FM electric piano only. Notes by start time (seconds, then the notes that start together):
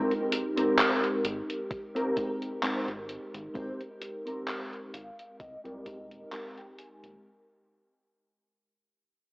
Already playing: G#3 C4 D#4 G4 A#4
2.16 G#3 C4 D#4 G4 A#4
2.63 G#3 C4 D#4 G4 A#4
3.54 G#3 C4 D#4 G4 A#4
5.85 G#3 C4 D#4 G4 A#4
6.31 G#3 C4 D#4 A#4